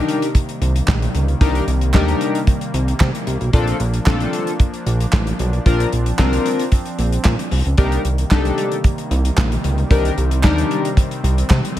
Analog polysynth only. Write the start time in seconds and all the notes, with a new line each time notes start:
Already playing: D4 D#4 G4 A#4
1.41 D4 D#4 G4 A#4
1.94 D4 D#4 G4 A#4
3.53 C4 D4 F4 A4
4.06 C4 D4 F4 A4
5.66 C4 D4 F4 A#4
6.19 C4 D4 F4 A#4
7.78 D4 D#4 G4 A#4
8.31 D4 D#4 G4 A4
9.90 D4 D#4 G4 A#4
10.43 D4 D#4 G4 A#4